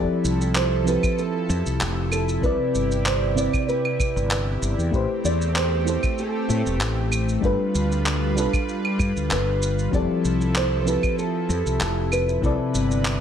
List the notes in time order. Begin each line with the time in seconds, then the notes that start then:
Already playing: F3 C4 E4 G4 A4 D5
0.24 C2, shaker
0.41 shaker
0.55 C5, clap, shaker
0.84 F3 C4 E4 G4 B4, shaker
0.89 A4
1.03 kick, claves, shaker
1.18 A4, shaker
1.49 F2, shaker
1.66 C2, shaker
1.81 F1 G4, clap, shaker
2.12 A4, claves, shaker
2.29 shaker
2.41 C2 C3 C4 E4 G4 B4, kick, shaker
2.46 D5
2.75 G1, shaker
2.91 shaker
3.06 C5, clap, shaker
3.35 C3 C4 E4 B4 D5, shaker
3.40 D5
3.53 kick, claves, shaker
3.68 B4, shaker
3.85 claves
3.99 kick, claves, shaker
4.16 G1, shaker
4.31 B4, clap, shaker
4.62 G1, shaker
4.78 E2, shaker
4.91 A1 A3 C4 E4 G4 B4, kick, shaker
4.96 C5
5.24 E2 D5, shaker
5.41 shaker
5.56 C5, clap, shaker
5.85 A3 E4 G4 A4, shaker
5.89 C5
6.03 kick, claves, shaker
6.18 A4, shaker
6.49 A2, shaker
6.66 E1, shaker
6.81 A1, clap, shaker
7.06 G4
7.12 claves, shaker
7.29 shaker
7.41 G1 G3 D4 F4 A4 B4, kick, shaker
7.46 B4
7.75 D2, shaker
7.92 shaker
8.06 clap, shaker
8.35 G3 D4 F4 A4, shaker
8.40 B4
8.53 kick, claves, shaker
8.69 shaker
8.85 claves
8.99 G2, kick, claves, shaker
9.16 D2, shaker
9.31 G1 B4, clap, shaker
9.62 shaker
9.79 shaker
9.91 F1 F3 C4 E4 G4 A4 D5, kick, shaker
9.96 A4
10.25 C2, shaker
10.41 shaker
10.55 C5, clap, shaker
10.81 F3 C5
10.86 C4 E4 G4 A4 B4, shaker
11.03 kick, claves, shaker
11.19 A4, shaker
11.49 F2, shaker
11.66 C2, shaker
11.80 F1 A4, clap, shaker
12.12 B4, claves, shaker
12.29 shaker
12.41 C2 C3 C4 E4 A4 B4, kick, shaker
12.46 D5
12.74 G1, shaker
12.91 shaker
13.05 clap, shaker